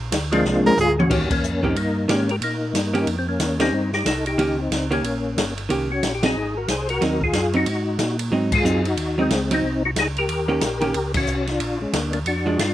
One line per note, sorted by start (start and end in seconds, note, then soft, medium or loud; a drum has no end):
0.00 0.11 A#1 medium
0.12 0.44 D2 medium
0.12 snare medium
0.12 hi-hat pedal medium
0.12 ride medium
0.31 0.75 F3 medium
0.31 0.75 G#3 medium
0.31 0.75 A#3 medium
0.31 0.75 C4 medium
0.31 0.75 D4 medium
0.31 0.76 D4 medium
0.31 0.66 F4 medium
0.31 ride soft
0.44 0.63 C2 loud
0.44 snare medium
0.64 0.71 C2 soft
0.64 0.96 F4 medium
0.64 1.00 G#4 loud
0.64 0.78 A#4 loud
0.64 high tom medium
0.77 1.09 D2 loud
0.77 0.92 G#4 loud
0.77 floor tom medium
0.77 hi-hat pedal medium
0.99 1.29 C#4 medium
0.99 1.29 F#4 loud
0.99 mid tom loud
1.10 1.42 D#2 medium
1.10 1.28 D#3 medium
1.10 1.29 A#3 medium
1.10 1.29 C#4 medium
1.10 1.29 G4 medium
1.10 kick medium
1.10 crash medium
1.31 1.61 A#3 medium
1.31 1.64 C#4 medium
1.31 kick medium
1.31 crash medium
1.42 1.74 F2 medium
1.42 hi-hat pedal medium
1.63 1.74 D#3 medium
1.63 1.75 A#3 medium
1.63 1.75 C4 medium
1.63 1.75 C#4 medium
1.63 1.76 D#4 medium
1.63 1.75 G4 medium
1.63 kick medium
1.75 2.07 G2 medium
1.75 2.07 A#3 medium
1.75 2.10 D#4 medium
1.75 ride medium
2.08 2.40 G#2 medium
2.08 2.26 D#3 medium
2.08 2.27 A#3 medium
2.08 2.29 A#3 medium
2.08 2.27 C#4 medium
2.08 2.31 C#4 medium
2.08 2.27 G4 medium
2.08 snare medium
2.08 hi-hat pedal soft
2.08 ride medium
2.29 2.36 G4 medium
2.29 2.36 A#4 medium
2.29 ride soft
2.41 2.73 A#2 medium
2.41 3.16 A#3 medium
2.41 3.16 D#4 medium
2.41 ride medium
2.74 3.06 G2 medium
2.74 snare medium
2.74 hi-hat pedal medium
2.74 ride medium
2.93 3.05 D#3 medium
2.93 3.05 A#3 medium
2.93 3.06 C#4 medium
2.93 3.06 G4 medium
2.93 ride soft
3.06 3.38 F2 medium
3.06 ride medium
3.19 3.27 C4 medium
3.29 3.58 A#3 medium
3.29 3.58 C#4 loud
3.39 3.71 D#2 medium
3.39 snare medium
3.39 hi-hat pedal medium
3.39 ride medium
3.60 3.71 D#3 medium
3.60 3.71 A#3 medium
3.60 3.91 C4 medium
3.60 3.72 C#4 medium
3.60 3.91 D#4 loud
3.60 3.72 G4 medium
3.60 snare medium
3.60 ride medium
3.71 4.04 G2 medium
3.93 4.06 D#4 medium
3.93 4.06 G4 medium
3.93 snare soft
4.05 4.37 C2 medium
4.05 4.25 D#4 medium
4.05 4.25 A4 medium
4.05 snare medium
4.05 hi-hat pedal medium
4.05 ride medium
4.26 4.57 D#4 medium
4.26 4.60 G4 medium
4.26 ride soft
4.37 4.69 C#2 medium
4.37 4.56 D#3 medium
4.37 4.56 A#3 medium
4.37 4.57 C#4 medium
4.37 4.57 G4 medium
4.37 ride medium
4.60 4.90 C4 medium
4.60 4.89 D#4 medium
4.70 5.02 C#2 medium
4.70 snare medium
4.70 hi-hat pedal medium
4.70 ride medium
4.91 5.02 D#3 medium
4.91 5.02 A#3 medium
4.91 5.54 A#3 medium
4.91 5.03 C#4 medium
4.91 5.54 C#4 medium
4.91 5.03 G4 medium
4.91 ride soft
5.03 5.35 A#1 medium
5.03 ride medium
5.36 5.68 G1 medium
5.36 snare medium
5.36 hi-hat pedal medium
5.36 ride medium
5.58 ride soft
5.69 6.02 C2 medium
5.69 5.87 D#3 medium
5.69 5.88 A#3 medium
5.69 5.88 C#4 medium
5.69 5.88 G4 medium
5.69 ride medium
5.91 6.13 C#4 medium
5.91 6.13 F#4 medium
6.03 6.34 A#1 medium
6.03 snare medium
6.03 hi-hat pedal medium
6.03 ride medium
6.15 6.23 G4 medium
6.23 6.34 F#3 medium
6.23 6.34 C4 medium
6.23 6.35 D#4 medium
6.23 6.55 D#4 medium
6.23 6.58 G#4 medium
6.23 snare medium
6.23 ride medium
6.35 6.67 G#1 medium
6.57 6.69 F#4 medium
6.57 6.69 A#4 loud
6.68 7.00 C2 medium
6.68 6.88 G#4 medium
6.68 6.89 C5 loud
6.68 snare medium
6.68 hi-hat pedal medium
6.68 ride medium
6.89 7.20 F#4 medium
6.89 7.23 A#4 loud
6.89 ride soft
7.01 7.33 D#2 medium
7.01 7.19 F#3 medium
7.01 7.20 C4 medium
7.01 7.20 D#4 medium
7.01 snare soft
7.01 ride medium
7.21 7.53 F4 medium
7.21 7.53 G#4 loud
7.21 kick medium
7.33 7.65 F#2 loud
7.33 snare medium
7.33 hi-hat pedal medium
7.33 ride medium
7.53 7.65 F#3 medium
7.53 7.65 C4 medium
7.53 7.66 D#4 medium
7.53 8.17 D#4 medium
7.53 8.17 F#4 medium
7.53 ride soft
7.66 7.98 G#2 medium
7.66 ride medium
7.99 8.31 A#2 medium
7.99 snare medium
7.99 hi-hat pedal medium
7.99 ride medium
8.19 ride medium
8.31 8.63 G#2 medium
8.31 8.50 F#3 medium
8.31 8.50 C4 medium
8.31 8.51 D#4 medium
8.52 8.83 F4 medium
8.52 8.87 G#4 loud
8.52 kick medium
8.52 crash medium
8.64 8.96 F#2 loud
8.64 8.83 F#3 medium
8.64 8.83 C4 medium
8.64 8.83 D#4 medium
8.64 hi-hat pedal medium
8.85 9.16 D#4 medium
8.85 9.20 F#4 medium
8.85 ride soft
8.97 9.29 D#2 medium
8.97 ride medium
9.18 9.29 F#3 medium
9.18 9.50 G#3 medium
9.18 9.30 C4 medium
9.18 9.52 C4 loud
9.18 9.30 D#4 medium
9.29 9.62 C#2 medium
9.29 snare medium
9.29 hi-hat pedal medium
9.29 ride medium
9.51 9.62 F#3 medium
9.51 9.63 C4 medium
9.51 9.83 C4 medium
9.51 9.63 D#4 medium
9.51 9.83 D#4 loud
9.51 ride medium
9.62 9.95 C2 medium
9.85 9.91 D#4 medium
9.85 9.91 F#4 loud
9.95 10.27 C#2 medium
9.95 snare medium
9.95 hi-hat pedal medium
9.95 ride medium
9.99 10.07 D#4 medium
9.99 10.08 G#4 loud
10.17 11.12 G4 medium
10.17 11.12 A#4 medium
10.17 ride soft
10.28 10.60 D#2 medium
10.28 ride medium
10.48 10.60 D#3 medium
10.48 10.60 A#3 medium
10.48 10.60 C#4 medium
10.48 10.61 G4 medium
10.61 10.93 A#1 medium
10.61 snare medium
10.61 hi-hat pedal medium
10.61 ride medium
10.81 10.93 D#3 medium
10.81 10.93 A#3 medium
10.81 10.93 C#4 medium
10.81 10.94 G4 medium
10.81 ride soft
10.94 11.26 C#2 medium
10.94 ride medium
11.14 11.47 C#4 medium
11.14 11.50 F#4 medium
11.14 kick medium
11.14 crash medium
11.27 11.59 C2 medium
11.27 hi-hat pedal medium
11.47 11.79 D4 medium
11.47 11.82 F4 medium
11.47 snare soft
11.47 ride soft
11.60 11.79 A#1 medium
11.60 ride medium
11.80 11.87 A#1 soft
11.80 11.93 G#3 medium
11.80 11.94 C#4 medium
11.92 12.25 D2 medium
11.92 12.13 A#3 medium
11.92 12.12 D4 medium
11.92 snare medium
11.92 hi-hat pedal medium
11.92 ride medium
12.13 12.20 A#3 medium
12.13 12.19 D4 medium
12.13 ride soft
12.25 12.58 F2 medium
12.25 12.58 D4 medium
12.25 12.60 F#4 medium
12.25 ride medium
12.46 12.58 F3 medium
12.46 12.58 G#3 medium
12.46 12.58 D4 medium
12.58 12.74 G2 medium
12.58 12.74 D4 medium
12.58 12.74 F4 loud
12.58 snare medium
12.58 hi-hat pedal medium
12.58 ride medium